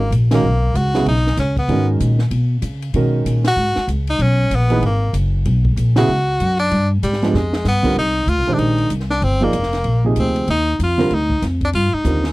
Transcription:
Already playing: tenor saxophone A#3
0.10 upright bass A#1, hi-hat pedal, ride
0.31 grand piano D#3 G#3 C#4 F#4 A#4, tenor saxophone A#3, snare, ride
0.43 upright bass B1
0.74 upright bass C#2, tenor saxophone F#4, hi-hat pedal, ride
0.94 grand piano C#3 F#3 B3 E4 G#4, snare, ride
1.06 upright bass B1, tenor saxophone D#4, ride
1.16 snare
1.27 snare
1.37 upright bass C#2, tenor saxophone C#4, snare, hi-hat pedal, ride
1.57 tenor saxophone B3, kick, ride
1.68 upright bass G#2, grand piano D#3 G#3 C#4 F#4 A#4, ride
2.00 upright bass A#2, hi-hat pedal, ride
2.19 snare
2.30 upright bass B2, ride
2.62 upright bass C#3, hi-hat pedal, ride
2.82 ride
2.94 upright bass B2, grand piano D#3 G#3 C#4 F#4 A#4, ride
3.25 upright bass A#2, hi-hat pedal, ride
3.44 tenor saxophone F#4, snare, ride
3.56 upright bass G#2
3.76 muted upright bass stroke, snare
3.87 upright bass C#2, hi-hat pedal, ride
4.07 tenor saxophone D#4, ride
4.19 upright bass B1, tenor saxophone C#4, ride
4.50 upright bass A#1, hi-hat pedal, ride
4.55 tenor saxophone B3
4.70 grand piano E3 A#3 D#4 G#4 B4, ride
4.81 upright bass G#1, ride
4.86 tenor saxophone A#3
5.13 upright bass F#1, hi-hat pedal, ride
5.45 upright bass B1, ride
5.65 kick
5.76 upright bass A#1, hi-hat pedal, ride
5.96 grand piano C#3 F#3 B3 E4 G#4, tenor saxophone F#4, snare, ride
6.08 upright bass C#2
6.40 upright bass F#2, hi-hat pedal, ride
6.59 tenor saxophone D4, ride
6.71 upright bass G2, ride
7.03 upright bass G#2, tenor saxophone G3, hi-hat pedal, ride
7.13 snare
7.22 grand piano F3 G#3 B3 D4 G4, snare, ride
7.34 upright bass F2, tenor saxophone G#3, snare
7.53 snare
7.65 upright bass G2, tenor saxophone B3, snare, hi-hat pedal
7.83 grand piano D3 G3 C4 F4 A#4, kick, crash
7.96 upright bass C2, tenor saxophone D#4
8.26 upright bass D2, tenor saxophone F4, hi-hat pedal, ride
8.38 upright bass C2
8.46 upright bass A#1, grand piano D#3 G#3 D4 G4 C5, ride
8.54 upright bass A#1, tenor saxophone D4
8.59 tenor saxophone D#4, ride
8.78 ride
8.90 upright bass C2, hi-hat pedal, ride
9.00 snare
9.10 tenor saxophone D4, snare
9.22 upright bass G1, tenor saxophone C4, ride
9.41 grand piano F3 A#3 D#4 G#4 D5, tenor saxophone A#3
9.53 upright bass F1, hi-hat pedal, ride
9.63 snare
9.73 snare, ride
9.84 upright bass A#1, ride
10.04 grand piano C3 F3 A#3 D#4 G#4
10.16 upright bass D2, tenor saxophone C4, hi-hat pedal, ride
10.36 ride
10.47 upright bass D#2, tenor saxophone D#4, ride
10.79 upright bass F2, hi-hat pedal, ride
10.83 tenor saxophone F4
10.98 grand piano D3 G3 C4 F4 A#4, snare
11.10 upright bass D2, ride
11.14 tenor saxophone D#4
11.30 kick
11.42 upright bass F2, snare, hi-hat pedal, ride
11.61 tenor saxophone D4, kick, ride
11.73 upright bass G2, tenor saxophone F4, ride
11.93 tenor saxophone D#4, muted upright bass stroke
12.04 upright bass D#2, grand piano D3 G3 C4 F4 A#4, hi-hat pedal, ride
12.24 snare

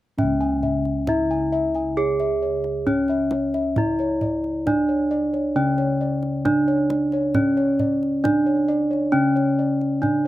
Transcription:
0.18 kettle gongs C#4 E5, bronze metallophone C#4, kendang low
0.23 kettle gongs C#2
0.41 kettle gongs G#5
0.63 kettle gongs E5, kendang low
0.85 kendang slap
1.07 kettle gongs D4 E5, bronze metallophone E4, kendang high, kendang low
1.31 kettle gongs G#5
1.52 kettle gongs E5
1.75 kettle gongs G#5, kendang slap
1.97 bronze metallophone G#4, kettle gongs C#5
2.20 kettle gongs E5, kendang slap
2.42 kettle gongs C#5
2.64 kendang slap
2.86 bronze metallophone C#4, kettle gongs D4 C#5, kendang low
3.08 kettle gongs E5, kendang slap
3.31 kettle gongs C#5, kendang high
3.54 kettle gongs E5, kendang slap
3.76 kettle gongs E4 D5, bronze metallophone E4, kendang low
3.99 kettle gongs C#5, kendang slap
4.21 kettle gongs D5, kendang low
4.44 kendang slap
4.66 kettle gongs D4 D5, bronze metallophone D4, kendang high, kendang low
4.89 kettle gongs C#5
5.11 kettle gongs D5
5.33 kettle gongs C#5, kendang slap
5.56 kettle gongs C#3 D5, bronze metallophone C#4
5.78 kettle gongs C#5, kendang slap
6.01 kettle gongs D5
6.23 kendang slap
6.45 bronze metallophone D4, kettle gongs D4 D5, kendang high, kendang low
6.68 kettle gongs C#5, kendang slap
6.90 kettle gongs D5, kendang high
7.12 kettle gongs C#5, kendang slap
7.35 kettle gongs C#4 D5, bronze metallophone C#4, kendang low
7.57 kettle gongs C#5, kendang slap
7.79 kettle gongs D5, kendang low
8.03 kendang slap
8.24 bronze metallophone D4, kettle gongs D4 D5, kendang high, kendang low
8.46 kettle gongs C#5
8.68 kettle gongs D5
8.91 kettle gongs C#5, kendang slap
9.12 kettle gongs C#3 D5, bronze metallophone C#4
9.36 kettle gongs C#5, kendang slap
9.59 kettle gongs D5
9.81 kendang slap
10.02 bronze metallophone D4, kettle gongs D4 D5, kendang low

